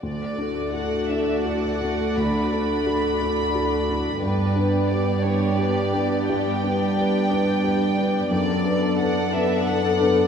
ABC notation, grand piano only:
X:1
M:3/4
L:1/8
Q:1/4=88
K:D
V:1 name="Grand piano"
D,, [DA] [FA] [DA] [FA] [DA] | D,, [DA] [FA] [DA] [FA] [DA] | G,, [DB] [GB] [DB] [GB] [DB] | G,, [DB] [GB] [DB] [GB] [DB] |
F,, [DB] [AB] [DB] [AB] [DB] |]